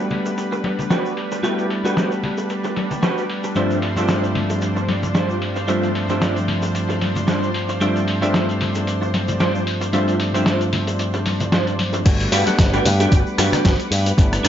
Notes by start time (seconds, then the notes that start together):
Already playing: G3 A3 B3 D4 B4 F#5
0.11 open hi-hat, tambourine, low conga
0.26 muted clean electric guitar stroke, closed hi-hat, tambourine, high bongo, shaker
0.38 muted clean electric guitar stroke, closed hi-hat, tambourine, shaker
0.52 muted clean electric guitar stroke, shaker
0.64 muted clean electric guitar stroke, open hi-hat, tambourine, high conga
0.79 muted clean electric guitar stroke, closed hi-hat, tambourine, low conga, shaker
0.90 F#4 G4 B4, snare, closed hi-hat, tambourine, shaker
1.06 shaker
1.17 open hi-hat, tambourine
1.32 muted clean electric guitar stroke, closed hi-hat, tambourine, shaker
1.43 G3 A3 B3 D4 E4 F#4 G4 B4, closed hi-hat, tambourine, shaker
1.58 closed hi-hat, tambourine, shaker
1.70 open hi-hat, tambourine
1.84 G3 A3 B3 D4 F#4 G4 B4 F#5, closed hi-hat, tambourine, high bongo, shaker
1.97 snare, closed hi-hat, tambourine, shaker
2.12 closed hi-hat, tambourine, shaker
2.23 open hi-hat, tambourine, low conga
2.38 muted clean electric guitar stroke, closed hi-hat, tambourine, high bongo, shaker
2.49 muted clean electric guitar stroke, closed hi-hat, tambourine, shaker
2.64 muted clean electric guitar stroke, tambourine, high bongo, shaker
2.76 muted clean electric guitar stroke, open hi-hat, tambourine, high conga
2.91 muted clean electric guitar stroke, closed hi-hat, tambourine, low conga, shaker
3.02 F#4 G4 B4, snare, closed hi-hat, tambourine, shaker
3.18 tambourine, shaker
3.29 open hi-hat, tambourine
3.44 muted clean electric guitar stroke, closed hi-hat, tambourine, shaker
3.55 G2 F3 G3 A3 C4 D4 F4 C5 E5, closed hi-hat, tambourine, shaker
3.71 tambourine, shaker
3.82 open hi-hat, tambourine
3.96 G2 F3 G3 A3 C4 D4 F4 C5 E5, closed hi-hat, tambourine, high bongo, shaker
4.08 snare, closed hi-hat, tambourine, shaker
4.24 closed hi-hat, tambourine, shaker
4.35 open hi-hat, tambourine, low conga
4.50 muted clean electric guitar stroke, closed hi-hat, tambourine, high bongo, shaker
4.61 muted clean electric guitar stroke, closed hi-hat, tambourine, shaker
4.76 muted clean electric guitar stroke, shaker
4.88 muted clean electric guitar stroke, open hi-hat, tambourine, high conga
5.03 muted clean electric guitar stroke, closed hi-hat, tambourine, low conga, shaker
5.15 G3 D4 F4 C5, snare, closed hi-hat, tambourine, shaker
5.30 shaker
5.42 open hi-hat, tambourine
5.56 muted clean electric guitar stroke, closed hi-hat, tambourine, shaker
5.68 G2 F3 G3 A3 C4 D4 F4 C5 E5, closed hi-hat, tambourine, shaker
5.83 closed hi-hat, tambourine, shaker
5.95 open hi-hat, tambourine
6.09 G2 F3 G3 A3 C4 D4 F4 C5 E5, closed hi-hat, tambourine, high bongo, shaker
6.22 snare, closed hi-hat, tambourine, shaker
6.36 closed hi-hat, tambourine, shaker
6.48 open hi-hat, tambourine, low conga
6.62 muted clean electric guitar stroke, closed hi-hat, tambourine, high bongo, shaker
6.75 muted clean electric guitar stroke, closed hi-hat, tambourine, shaker
6.89 muted clean electric guitar stroke, tambourine, high bongo, shaker
7.01 muted clean electric guitar stroke, open hi-hat, tambourine, high conga
7.16 muted clean electric guitar stroke, closed hi-hat, tambourine, low conga, shaker
7.27 G3 D4 F4 C5, snare, closed hi-hat, tambourine, shaker
7.43 tambourine, shaker
7.54 open hi-hat, tambourine
7.69 muted clean electric guitar stroke, closed hi-hat, tambourine, shaker
7.81 G2 F3 G3 A3 C4 D4 F4 C5 E5, closed hi-hat, tambourine, shaker
7.96 tambourine, shaker
8.08 open hi-hat, tambourine
8.21 G2 F3 G3 A3 C4 D4 F4 C5 E5, closed hi-hat, tambourine, high bongo, shaker
8.34 snare, closed hi-hat, tambourine, shaker
8.49 closed hi-hat, tambourine, shaker
8.61 open hi-hat, tambourine, low conga
8.75 muted clean electric guitar stroke, closed hi-hat, tambourine, high bongo, shaker
8.87 muted clean electric guitar stroke, closed hi-hat, tambourine, shaker
9.02 muted clean electric guitar stroke, shaker
9.14 muted clean electric guitar stroke, open hi-hat, tambourine, high conga
9.28 muted clean electric guitar stroke, closed hi-hat, tambourine, low conga, shaker
9.40 G3 D4 F4 C5, snare, closed hi-hat, tambourine, shaker
9.55 shaker
9.67 open hi-hat, tambourine
9.81 muted clean electric guitar stroke, closed hi-hat, tambourine, shaker
9.93 G2 F3 G3 A3 C4 D4 F4 C5 E5, closed hi-hat, tambourine, shaker
10.08 closed hi-hat, tambourine, shaker
10.20 open hi-hat, tambourine
10.34 G2 F3 G3 A3 C4 D4 F4 C5 E5, closed hi-hat, tambourine, high bongo, shaker
10.46 snare, closed hi-hat, tambourine, shaker
10.61 closed hi-hat, tambourine, shaker
10.73 open hi-hat, tambourine, low conga
10.87 muted clean electric guitar stroke, closed hi-hat, tambourine, high bongo, shaker
10.99 muted clean electric guitar stroke, closed hi-hat, tambourine, shaker
11.14 muted clean electric guitar stroke, tambourine, high bongo, shaker
11.26 muted clean electric guitar stroke, open hi-hat, tambourine, high conga
11.40 muted clean electric guitar stroke, closed hi-hat, tambourine, low conga, shaker
11.52 G3 D4 F4 C5, snare, closed hi-hat, tambourine, shaker
11.67 closed hi-hat, tambourine, shaker
11.79 open hi-hat, tambourine, high conga
11.93 muted clean electric guitar stroke, closed hi-hat, tambourine, high bongo, shaker
12.05 G1 G3 A3 B3 D4 F#4 B4 F#5 D6, kick, closed hi-hat, crash, tambourine, shaker
12.20 closed hi-hat, tambourine, shaker
12.32 G2 D4 F#4 G4 B4, open hi-hat, tambourine
12.46 G3 A3 B3 D4 F#5, closed hi-hat, tambourine, high bongo, high conga, shaker
12.59 G1, muted clean electric guitar stroke, kick, snare, closed hi-hat, tambourine, shaker
12.73 D4 F#4 G4 B4, tambourine, shaker
12.85 G2, open hi-hat, tambourine, low conga
13.00 D4 F#4 G4 B4, closed hi-hat, tambourine, high bongo, shaker
13.12 G1, kick, closed hi-hat, tambourine, shaker
13.27 shaker
13.38 G2 D4 F#4 G4 B4, cross-stick, open hi-hat, tambourine, high conga
13.52 muted picked electric bass stroke, cross-stick, closed hi-hat, tambourine, low conga, shaker
13.65 G1, kick, snare, closed hi-hat, tambourine, shaker
13.80 closed hi-hat, shaker
13.91 G2, open hi-hat, tambourine
14.06 muted clean electric guitar stroke, closed hi-hat, tambourine, shaker
14.17 G1 G3 A3 B3 D4 E4, kick, closed hi-hat, tambourine, shaker
14.33 cross-stick, closed hi-hat, tambourine, shaker
14.44 G2 D4 F#4 G4, cross-stick, open hi-hat, tambourine